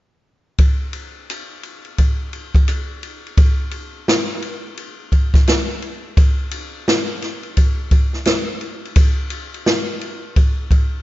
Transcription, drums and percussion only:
0.58 kick, ride
0.93 ride
1.30 hi-hat pedal, ride
1.63 ride
1.85 ride
1.98 kick, ride
2.33 ride
2.55 kick, ride
2.68 hi-hat pedal, ride
3.03 ride
3.27 ride
3.37 kick, ride
3.71 ride
4.08 snare, hi-hat pedal, ride
4.42 ride
4.77 ride
5.12 kick, ride
5.34 kick, snare, ride
5.47 snare, hi-hat pedal, ride
5.82 ride
6.17 kick, ride
6.51 ride
6.88 snare, hi-hat pedal, ride
7.22 snare, ride
7.43 ride
7.57 kick, ride
7.91 kick, ride
8.13 snare
8.25 snare, hi-hat pedal, ride
8.61 ride
8.85 ride
8.96 kick, ride
9.30 ride
9.54 ride
9.66 snare, hi-hat pedal, ride
10.01 ride
10.36 kick, ride
10.71 kick, ride

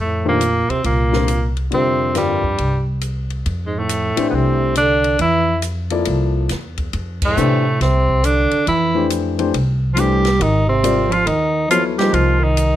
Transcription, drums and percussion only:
0.41 hi-hat pedal, ride
0.70 ride
0.84 ride
1.13 snare
1.28 hi-hat pedal, ride
1.57 ride
1.72 ride
2.15 snare, hi-hat pedal, ride
2.43 kick
2.58 ride
3.01 hi-hat pedal, ride
3.30 ride
3.46 ride
3.89 hi-hat pedal, ride
4.17 ride
4.75 hi-hat pedal, ride
5.04 ride
5.19 ride
5.62 hi-hat pedal, ride
5.90 ride
6.05 ride
6.49 snare, hi-hat pedal, ride
6.78 kick, ride
6.93 ride
7.22 kick, crash
7.37 hi-hat pedal
7.81 snare, ride
8.09 kick
8.24 hi-hat pedal, ride
8.51 ride
8.67 ride
9.10 hi-hat pedal, ride
9.39 ride
9.54 ride
9.97 hi-hat pedal, ride
10.25 snare, ride
10.41 ride
10.84 hi-hat pedal, ride
11.12 ride
11.27 ride
11.71 hi-hat pedal, ride
11.99 snare, ride
12.14 ride
12.57 hi-hat pedal, ride

